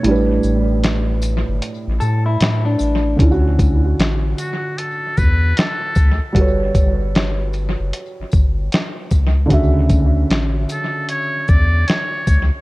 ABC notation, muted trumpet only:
X:1
M:4/4
L:1/16
Q:"Swing 16ths" 1/4=76
K:D
V:1 name="Muted trumpet"
z16 | z6 F2 A2 B2 A3 z | z16 | z6 A2 c2 d2 c3 z |]